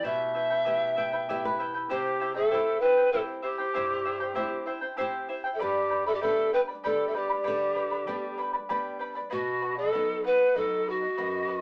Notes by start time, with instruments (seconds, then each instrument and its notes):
0.03 nylon-string guitar B2, charango E4 G4 B4 E5 G5, pan flute E5
0.34 charango E4 B4 E5 G5
0.50 charango E4 B4 G5
0.65 nylon-string guitar B3 E4 G4, charango E4 G4 B4 E5 G5
0.96 charango E4 B4 E5 G5, nylon-string guitar G5
1.12 charango E4 B4 G5
1.29 nylon-string guitar B3 E4 G4 E5, charango E4 G4 B4 E5 G5
1.45 nylon-string guitar B4
1.59 charango E4 B4 E5 G5
1.74 charango E4 B4 G5
1.89 nylon-string guitar C3, charango E4 G4 C5 E5 G5, pan flute G4, quena C5
2.20 charango E4 C5 E5 G5
2.34 charango E4 C5 G5, pan flute A4, quena E5
2.51 nylon-string guitar C4 E4 G4, charango E4 G4 C5 E5 G5
2.80 charango E4 C5 E5 G5, pan flute B4, quena G5
2.97 charango E4 C5 G5
3.12 nylon-string guitar C4 E4 G4, charango E4 G4 C5 E5 G5, pan flute A4, quena E5
3.42 charango E4 C5 E5 G5, pan flute G4, quena C5
3.58 charango E4 C5 G5
3.74 nylon-string guitar G2, charango E4 G4 C5 E5 G5
4.05 charango E4 C5 E5 G5
4.20 charango E4 C5 G5
4.35 nylon-string guitar C4 E4 G4, charango E4 G4 C5 E5 G5
4.66 charango E4 C5 E5 G5
4.81 charango E4 C5 G5
4.97 nylon-string guitar C4 E4 G4, charango E4 G4 C5 E5 G5
5.29 charango E4 C5 E5 G5
5.44 charango E4 C5 G5
5.53 pan flute A4, quena E5
5.59 nylon-string guitar G2, charango G4 B4 D5 G5 B5, pan flute G4, quena D5
5.90 charango B4 D5 G5 B5
6.06 pan flute A4, charango B4 D5 B5, quena E5
6.14 pan flute G4, quena D5
6.21 nylon-string guitar G3 B3 D4, charango G4 B4 D5 G5 B5, pan flute A4, quena E5
6.53 charango B4 D5 G5 B5, pan flute B4, quena G5
6.68 charango B4 D5 B5
6.84 nylon-string guitar G3 B3 D4, charango G4 B4 D5 G5 B5, pan flute A4, quena D5
7.08 pan flute A4, quena E5
7.14 pan flute G4, charango B4 D5 G5 B5, quena D5
7.29 charango B4 D5 B5
7.44 nylon-string guitar D3, charango G4 B4 D5 G5 B5
7.75 charango B4 D5 G5 B5
7.91 charango B4 D5 B5
8.07 nylon-string guitar G3 B3 D4, charango G4 B4 D5 G5 B5
8.38 charango B4 D5 G5 B5
8.53 charango B4 D5 B5
8.69 nylon-string guitar G3 B3 D4, charango G4 B4 D5 G5 B5
8.99 charango B4 D5 G5 B5
9.15 charango B4 D5 B5
9.30 nylon-string guitar B2, pan flute F#4, charango B4 D#5 F#5, quena D#5
9.61 charango B4 D#5 F#5
9.77 pan flute A4, quena D#5, charango D#5 F#5
9.92 nylon-string guitar F#3 B3 D#4, charango B4 D#5 F#5
10.23 charango B4 D#5 F#5, pan flute B4, quena F#5
10.39 charango D#5 F#5
10.55 nylon-string guitar F#3 B3 D#4, pan flute A4, charango B4 D#5 F#5, quena D#5
10.86 pan flute F#4, charango B4 D#5 F#5, quena D#5
11.01 charango D#5 F#5
11.17 nylon-string guitar F#2, charango B4 D#5 F#5
11.47 charango B4 D#5 F#5